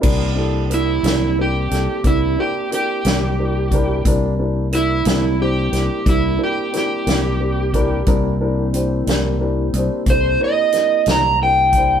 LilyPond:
<<
  \new Staff \with { instrumentName = "Electric slide guitar" } { \time 12/8 \key c \mixolydian \tempo 4. = 60 r4 e'4 g'4 e'8 g'8 g'2 | r4 e'4 g'4 e'8 g'8 g'2 | r2. c''8 ees''4 bes''8 g''4 | }
  \new Staff \with { instrumentName = "Grand piano" } { \time 12/8 \key c \mixolydian <d' e' g' bes'>8 <d' e' g' a'>8 <d' e' g' bes'>8 <d' e' g' bes'>8 <d' e' g' bes'>8 <d' e' g' a'>8 <d' e' g' bes'>8 <d' e' g' bes'>8 <d' e' g' bes'>8 <d' e' g' bes'>8 <d' e' g' bes'>8 <d' e' g' bes'>8 | <d' e' g' bes'>8 <d' e' g' bes'>8 <d' e' g' bes'>8 <d' e' g' bes'>8 <d' e' g' c''>8 <d' e' g' bes'>8 <d' e' g' bes'>8 <d' e' g' bes'>8 <d' e' g' bes'>8 <d' e' g' bes'>8 <d' e' g' bes'>8 <d' e' g' bes'>8 | <d' e' g' bes'>8 <d' e' g' bes'>8 <d' e' g' c''>8 <d' e' g' bes'>8 <d' e' g' bes'>8 <d' e' g' c''>8 <d' e' g' a'>8 <d' e' g' bes'>8 <d' e' g' bes'>8 <d' e' g' bes'>8 <d' e' g' bes'>8 <d' e' g' c''>8 | }
  \new Staff \with { instrumentName = "Tonewheel organ" } { \time 12/8 \key c \mixolydian <bes c' e' g'>1. | <g bes c' e'>1. | <bes c' e' g'>1. | }
  \new Staff \with { instrumentName = "Fingered electric bass" } { \clef bass \time 12/8 \key c \mixolydian c,4. c,4 c,16 r16 c,8 r4 c,4. | c,4. c,4 c,16 r16 c,8 r4 c,4. | c,4. c,4 c,16 r16 c,8 r4 c,4. | }
  \new DrumStaff \with { instrumentName = "Drums" } \drummode { \time 12/8 <cymc bd>4 hh8 <hh sn>4 <hh sn>8 <hh bd>4 hh8 <hh sn>4 <hh bd>8 | <hh bd>4 hh8 <hh sn>4 <hh sn>8 <hh bd>4 <hh sn>8 <hh sn>4 <hh bd>8 | <hh bd>4 hh8 <hh sn>4 hh8 <hh bd>4 <hh sn>8 <hh sn>4 <hh bd>8 | }
>>